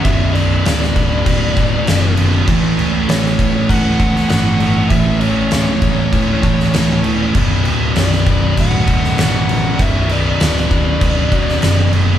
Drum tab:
CC |x-x-x-x-x-x-x-x-|x-x-x-x-x-x-x-x-|x-x-x-x-x-x-x-x-|x-x-x-x-x-x-x-x-|
SD |----oo------o---|----oo-----oo---|----o------oo---|----oo-----oo---|
BD |o-----o-o-o-----|o-----o-o-o-----|o-----o-o-o-----|o-----o-o-o-----|

CC |x-x-x-x-x-x-x-x-|
SD |----oo-----oo---|
BD |o-----o-o-o-----|